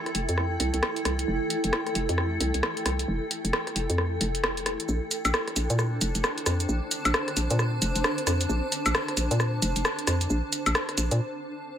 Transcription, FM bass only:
0.15 0.27 F1 medium
0.29 0.58 F2 medium
0.60 0.72 C2 loud
0.74 0.81 C2 medium
1.05 1.25 C2 medium
1.28 1.39 F1 loud
1.64 1.72 F1 loud
1.96 2.07 F1 medium
2.09 2.38 F2 medium
2.41 2.52 C2 loud
2.55 2.62 C2 medium
2.86 3.05 C2 medium
3.08 3.20 F1 loud
3.45 3.52 F1 loud
3.76 3.87 F1 medium
3.90 4.19 F2 medium
4.21 4.76 F1 loud
4.89 5.00 A#1 loud
5.25 5.32 A#1 loud
5.56 5.68 A#1 medium
5.70 5.99 A#2 medium
6.02 6.13 F1 loud
6.15 6.23 F1 medium
6.47 6.66 F2 medium
6.69 6.81 A#1 loud
7.05 7.13 A#1 medium
7.37 7.48 A#1 medium
7.51 7.80 A#2 loud
7.82 7.93 F1 loud
7.96 8.03 F1 medium
8.27 8.47 F2 medium
8.49 8.61 A#1 loud
8.86 8.93 A#1 loud
9.17 9.29 A#1 medium
9.31 9.60 A#2 medium
9.62 9.74 F1 loud
9.76 9.83 F1 medium
10.08 10.27 F2 medium
10.30 10.42 A#1 loud
10.67 10.74 A#1 medium
10.98 11.09 A#1 medium
11.11 11.20 A#2 medium

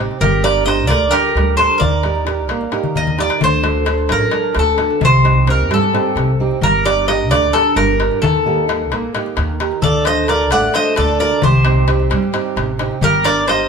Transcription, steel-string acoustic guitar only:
0.00 0.20 C3 medium
0.00 0.16 C4 soft
0.00 0.17 D#4 soft
0.00 0.17 G4 medium
0.22 0.66 G3 medium
0.43 0.65 D4 medium
0.43 0.65 G4 soft
0.43 0.66 A#4 medium
0.66 1.03 D4 soft
0.66 1.03 G4 soft
0.66 1.04 A#4 medium
0.90 1.34 D3 medium
1.12 1.49 D4 soft
1.12 1.49 G4 soft
1.12 1.49 A#4 medium
1.37 1.80 G3 medium
1.59 1.77 D4 soft
1.59 1.77 G4 soft
1.59 1.77 A#4 medium
1.82 2.26 D#3 medium
2.05 2.26 D#4 soft
2.05 2.26 G4 soft
2.05 2.27 A#4 medium
2.27 2.64 D#4 soft
2.27 2.64 G4 soft
2.27 2.64 A#4 medium
2.50 2.95 A#3 medium
2.72 3.09 D#4 soft
2.72 3.10 G4 soft
2.72 3.10 A#4 medium
2.96 3.40 D#3 medium
3.18 3.37 D#4 soft
3.18 3.37 G4 soft
3.18 3.37 A#4 medium
3.41 3.86 D3 medium
3.63 3.86 D4 soft
3.63 3.86 F#4 soft
3.63 3.87 A4 medium
3.87 4.24 D4 soft
3.87 4.24 F#4 soft
3.87 4.25 A4 medium
4.11 4.55 F#3 medium
4.33 4.70 D4 medium
4.33 4.70 F#4 soft
4.33 4.70 A4 medium
4.56 5.01 D3 medium
4.79 4.97 D4 soft
4.79 4.98 F#4 soft
4.79 4.98 A4 medium
5.02 5.47 C3 medium
5.24 5.46 C4 soft
5.24 5.47 D#4 soft
5.24 5.47 G4 medium
5.47 5.84 C4 soft
5.47 5.85 D#4 soft
5.47 5.85 G4 medium
5.71 6.15 G3 medium
5.93 6.30 C4 medium
5.93 6.31 D#4 soft
5.93 6.31 G4 medium
6.16 6.61 C3 medium
6.40 6.58 C4 soft
6.40 6.59 D#4 soft
6.40 6.59 G4 medium
6.63 7.07 G3 medium
6.85 7.08 D4 soft
6.85 7.08 G4 soft
6.85 7.08 A#4 medium
7.09 7.45 D4 soft
7.09 7.45 G4 soft
7.09 7.46 A#4 soft
7.32 7.76 D3 medium
7.54 7.91 D4 medium
7.54 7.91 G4 soft
7.54 7.92 A#4 medium
7.77 8.22 G3 medium
8.00 8.18 D4 soft
8.00 8.18 G4 soft
8.00 8.19 A#4 medium
8.23 8.67 D#3 medium
8.46 8.69 A#3 medium
8.46 8.67 D#4 soft
8.46 8.68 G4 soft
8.69 8.92 A#3 soft
8.69 9.05 D#4 soft
8.69 9.05 G4 soft
8.93 9.15 A#3 medium
9.15 9.52 A#3 medium
9.15 9.51 D#4 soft
9.15 9.52 G4 soft
9.38 9.82 D#3 medium
9.60 9.78 D#4 soft
9.60 9.79 G4 soft
9.60 9.79 A#4 soft
9.83 10.28 D3 medium
10.06 10.28 D4 soft
10.06 10.29 F#4 soft
10.06 10.29 A4 medium
10.29 10.65 D4 soft
10.29 10.66 F#4 soft
10.29 10.66 A4 medium
10.53 10.96 A3 medium
10.75 11.11 D4 soft
10.75 11.11 F#4 soft
10.75 11.12 A4 medium
10.98 11.42 D3 medium
11.20 11.38 D4 soft
11.20 11.38 F#4 soft
11.20 11.39 A4 medium
11.44 11.87 C3 medium
11.65 11.87 C4 soft
11.65 11.87 D#4 soft
11.65 11.88 G4 medium
11.88 12.25 C4 soft
11.88 12.25 D#4 soft
11.88 12.25 G4 medium
12.11 12.55 G3 medium
12.34 12.70 C4 soft
12.34 12.71 D#4 soft
12.34 12.71 G4 medium
12.57 13.01 C3 medium
12.80 12.98 C4 medium
12.80 12.98 D#4 soft
12.80 12.98 G4 medium
13.02 13.47 G3 medium
13.25 13.47 D4 medium
13.25 13.48 G4 soft
13.25 13.48 A#4 medium
13.48 13.69 D4 soft
13.48 13.69 G4 soft
13.48 13.69 A#4 medium

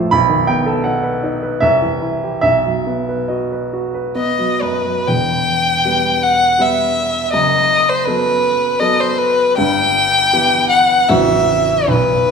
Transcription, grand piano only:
0.00 0.15 A2 medium
0.00 0.15 F3 medium
0.00 0.16 C4 medium
0.00 0.16 F4 medium
0.00 0.15 A4 medium
0.00 0.16 C5 medium
0.00 0.15 A5 loud
0.11 1.59 B1 medium
0.11 0.48 B5 loud
0.29 0.59 D#3 soft
0.47 0.78 B3 soft
0.47 0.85 G5 medium
0.66 0.96 A4 medium
0.84 1.16 D#4 soft
0.84 1.62 F#5 medium
1.03 1.35 B4 soft
1.23 1.55 D#4 medium
1.43 1.63 B4 soft
1.60 2.42 C2 medium
1.60 2.40 E5 medium
1.82 2.15 E3 soft
2.02 2.36 E4 soft
2.24 2.45 G4 soft
2.41 5.02 B1 medium
2.41 3.29 E5 medium
2.66 3.00 F#3 soft
2.87 3.21 B3 soft
3.09 3.43 B4 soft
3.28 3.64 F#4 soft
3.28 4.15 D#5 soft
3.52 3.86 B4 soft
3.73 4.08 F#4 soft
3.94 4.29 B4 soft
4.15 4.52 B3 soft
4.39 4.76 F#3 soft
4.62 4.98 F#2 soft
4.85 5.07 F#3 soft
5.08 7.30 E1 soft
5.08 7.30 E2 soft
5.85 6.56 G3 soft
5.85 6.57 B3 soft
5.85 6.57 B4 soft
6.59 7.29 G3 soft
6.59 7.29 B3 soft
6.59 7.29 B4 soft
7.33 9.53 F#1 soft
7.33 9.53 F#2 soft
8.07 8.76 F#3 soft
8.07 8.76 B3 soft
8.07 8.76 A4 soft
8.80 9.54 F#3 soft
8.80 9.54 B3 soft
8.80 9.54 A4 soft
9.58 11.04 G1 medium
9.58 11.04 G2 medium
10.33 11.05 E3 soft
10.33 11.05 B3 soft
10.33 11.05 G4 soft
11.09 11.86 A0 medium
11.09 11.86 A1 medium
11.09 11.84 F#3 soft
11.09 11.85 C4 soft
11.09 11.85 F#4 soft
11.88 12.31 B0 soft
11.88 12.31 B1 medium

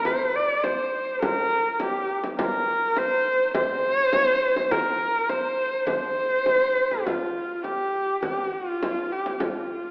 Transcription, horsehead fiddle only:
0.06 0.37 C5 medium
0.36 0.65 D5 loud
0.64 1.22 C5 medium
1.23 1.74 A#4 loud
1.74 1.83 A#4 medium
1.82 2.25 G4 medium
2.40 3.00 A#4 medium
2.98 3.54 C5 medium
3.55 4.73 C5 loud
4.71 5.31 A#4 medium
5.29 5.88 C5 medium
5.89 7.07 C5 loud
7.05 7.65 F4 medium
7.63 8.22 G4 medium
8.24 8.54 G4 medium
8.53 9.14 F4 medium
9.12 9.32 G4 medium
9.32 9.41 G4 medium
9.39 9.91 F4 medium

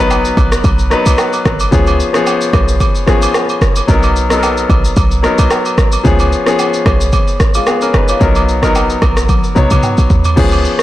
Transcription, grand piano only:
0.00 0.90 F#3 medium
0.00 0.91 B3 medium
0.00 0.92 D#4 medium
0.00 1.74 A#4 medium
0.00 0.76 B4 medium
0.90 1.59 F#3 medium
0.90 1.59 B3 medium
0.90 1.59 D#4 medium
0.90 1.60 B4 medium
1.71 2.06 F3 medium
1.71 2.06 B3 medium
1.71 2.07 C#4 medium
1.71 2.07 G#4 medium
2.13 2.91 F3 medium
2.13 2.92 B3 medium
2.13 2.92 C#4 medium
2.13 2.92 G#4 medium
3.06 3.75 F3 medium
3.06 3.75 B3 medium
3.06 3.76 C#4 medium
3.06 3.76 G#4 loud
3.87 4.22 F#3 medium
3.87 4.22 B3 medium
3.87 4.23 D#4 medium
3.87 4.23 A#4 medium
4.29 5.07 F#3 medium
4.29 5.08 B3 medium
4.29 5.08 D#4 medium
4.29 4.37 A4 medium
4.38 5.12 A#4 medium
5.23 5.91 F#3 medium
5.23 5.92 B3 medium
5.23 5.92 D#4 medium
5.23 5.92 A#4 medium
6.04 6.38 F3 medium
6.04 6.39 B3 medium
6.04 6.39 C#4 medium
6.04 6.40 G#4 medium
6.46 7.24 F3 medium
6.46 7.24 B3 medium
6.46 7.24 C#4 medium
6.46 7.25 G#4 medium
7.55 7.67 G#3 medium
7.55 7.66 F4 medium
7.67 7.81 B3 medium
7.67 7.81 G#4 medium
7.82 7.94 C#4 medium
7.82 7.93 A#4 medium
7.94 8.09 D#4 medium
7.94 8.08 B4 medium
8.09 8.35 F4 medium
8.09 8.35 C#5 medium
8.20 8.54 F#3 medium
8.20 8.55 B3 medium
8.20 8.55 D#4 medium
8.20 8.56 A#4 medium
8.62 9.40 F#3 medium
8.62 9.40 B3 medium
8.62 9.41 D#4 medium
8.62 9.41 A#4 medium
9.55 10.24 F#3 medium
9.55 10.24 B3 medium
9.55 10.24 D#4 medium
9.55 10.25 C#5 medium
10.36 10.83 F3 medium
10.36 10.83 B3 medium
10.36 10.83 C#4 medium
10.36 10.83 G#4 medium

